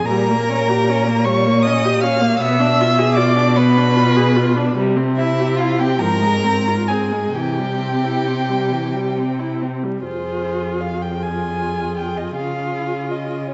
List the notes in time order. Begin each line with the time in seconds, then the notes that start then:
0.05 A#2 A#4 A#5
0.10 G3
0.30 A#3
0.50 C#4
0.69 G4
0.89 C#4
1.08 A#3
1.24 G3 C#5 C#6
1.46 A#3
1.62 D#5 D#6
1.67 C#4
1.85 G4
2.01 C#4 F5 F6
2.21 A#3
2.40 B2 B3 E5 E6
2.60 D4
2.81 F4
2.99 G#4
3.15 F4 D5 D6
3.36 D4
3.56 B3 B4 B5
3.77 D4
3.96 F4
4.16 G#4
4.36 F4
4.56 D4
4.77 C3 G3
4.96 C4
5.16 E4 E5
5.39 G4
5.56 F4 F5
5.60 E4
5.79 C4 G4 G5
5.99 G#2 F3 A#4 A#5
6.22 G#3
6.44 C4
6.67 F4
6.88 C4 G#4 G#5
7.12 G#3
7.33 C3 E3 G4 G5
7.59 G3
7.82 C4
8.05 E4
8.27 C4
8.49 G3
8.71 E3
8.95 G3
9.18 C4
9.39 E4
9.62 C4
9.84 G3
10.02 F2 F4 G#4 C5
10.81 F5
11.02 G5
11.22 F4 G#4 G#5
11.97 G5
12.17 D#5
12.35 C#3 F4 G#4 F5
13.12 D#5
13.48 G#4 C#5